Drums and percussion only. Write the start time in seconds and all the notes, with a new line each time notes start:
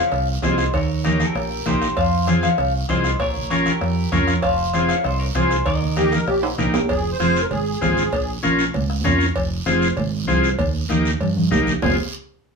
0.12 bombo rim, cowbell, long guiro
0.42 bombo low, bombo rim, cowbell, high conga, low timbale, short guiro
0.58 bombo rim, short guiro
0.74 bombo low, bombo rim, cowbell, long guiro
1.04 bombo rim, cowbell, high conga, short guiro
1.19 bombo rim, high conga, short guiro
1.35 bombo rim, cowbell, long guiro
1.66 bombo low, bombo rim, cowbell, high conga, low conga, short guiro
1.82 bombo rim, short guiro
1.97 bombo low, bombo rim, cowbell, long guiro
2.27 bombo rim, cowbell, high conga, short guiro
2.43 bombo rim, high conga, short guiro
2.58 bombo rim, cowbell, long guiro
2.89 bombo low, bombo rim, cowbell, high conga, short guiro
3.04 bombo rim, short guiro
3.20 bombo low, bombo rim, cowbell, long guiro
3.35 low conga
3.50 bombo rim, cowbell, high conga, short guiro
3.66 bombo rim, high conga, short guiro
3.81 bombo rim, cowbell, long guiro
4.12 bombo low, bombo rim, cowbell, high conga, low conga, short guiro
4.27 bombo rim, short guiro
4.42 bombo low, bombo rim, cowbell, long guiro
4.73 bombo rim, cowbell, high conga, short guiro
4.89 bombo rim, short guiro
5.04 bombo rim, cowbell, long guiro
5.35 bombo low, bombo rim, cowbell, high conga, short guiro
5.51 bombo rim, short guiro
5.66 bombo low, bombo rim, cowbell, long guiro
5.81 low conga
5.96 bombo rim, cowbell, high conga, short guiro
6.12 bombo rim, high conga, short guiro
6.28 bombo rim, cowbell, long guiro
6.43 high timbale
6.58 bombo low, bombo rim, cowbell, high conga, low conga, short guiro
6.74 bombo rim, low timbale, short guiro
6.89 bombo low, cowbell, high conga, long guiro
7.20 bombo rim, high conga, short guiro
7.36 short guiro
7.51 cowbell, high conga, low conga, long guiro
7.82 bombo low, bombo rim, high conga, low timbale, short guiro
7.97 short guiro
8.12 bombo low, cowbell, long guiro
8.43 bombo rim, high conga, short guiro
8.59 short guiro
8.74 cowbell, high conga, low conga, long guiro
8.90 bombo rim
9.05 bombo low, bombo rim, high conga, low conga, low timbale, short guiro
9.20 short guiro
9.35 bombo low, cowbell, long guiro
9.66 bombo rim, high conga, short guiro
9.82 short guiro
9.97 cowbell, high conga, low conga, long guiro
10.28 bombo low, bombo rim, high conga, short guiro
10.44 short guiro
10.59 bombo low, cowbell, high conga, low conga, long guiro
10.90 bombo rim, high conga, short guiro
11.05 short guiro
11.21 cowbell, high conga, long guiro
11.36 high conga
11.51 bombo low, bombo rim, low conga, low timbale, short guiro
11.67 low conga, short guiro
11.82 bombo low, low conga, low timbale, long guiro